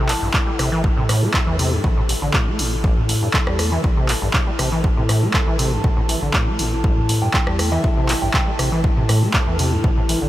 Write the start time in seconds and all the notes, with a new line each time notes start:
Already playing: A1 C3 E4 A4 A5
0.09 A2 A5, clap, open hi-hat
0.22 A1 G2
0.34 A2, kick, clap
0.47 G3
0.59 A1 C3, cross-stick, open hi-hat
0.72 E3
0.84 A1, kick
0.97 A2 C3
1.09 A2, cross-stick, open hi-hat
1.22 A3
1.34 A2, kick, clap
1.47 E2 E3
1.59 C3, open hi-hat
1.72 G2
1.84 A1 A2, kick
1.97 A2
2.09 A1, open hi-hat
2.22 A1 D3
2.34 A2, kick, clap
2.47 A3
2.59 A1 A2, open hi-hat
2.72 C3
2.84 A1, kick
2.97 A2
3.09 A1, open hi-hat
3.22 G2
3.33 A2, kick, clap
3.47 E2 G3, cross-stick
3.59 A3, cross-stick, open hi-hat
3.72 E3
3.84 A1, kick
3.97 C3
4.08 A2, clap, open hi-hat
4.22 A1 G2
4.33 A2, kick, clap
4.47 G3
4.59 A1 C3, cross-stick, open hi-hat
4.72 E3
4.84 A1, kick
4.97 A2 C3
5.09 A2, cross-stick, open hi-hat
5.22 A3
5.33 A2, kick, clap
5.47 A1 E3
5.59 C3, open hi-hat
5.72 G2
5.84 A1 A2, kick
5.97 A2
6.09 E3, open hi-hat
6.22 A1 D3
6.34 A2, kick, clap
6.47 A3
6.59 A1 A2, open hi-hat
6.72 C3
6.84 A1, kick
6.97 A2
7.09 A1, open hi-hat
7.22 G2 G5
7.34 A2 G5, kick, clap
7.47 E2 G3, cross-stick
7.59 A3, cross-stick, open hi-hat
7.72 E3 E5
7.84 A1, kick
7.97 C3
8.09 A2, clap, open hi-hat
8.22 A1 G2 G5
8.34 A2 G5, kick, clap
8.47 G3
8.59 A1 C3, cross-stick, open hi-hat
8.72 E3
8.84 A1, kick
8.97 A2 C3
9.09 A2, cross-stick, open hi-hat
9.22 A3
9.34 A2, kick, clap
9.47 E2 E3
9.59 C3, open hi-hat
9.72 G2
9.84 A1 A2, kick
9.97 A2
10.09 E3, open hi-hat
10.22 A1 D3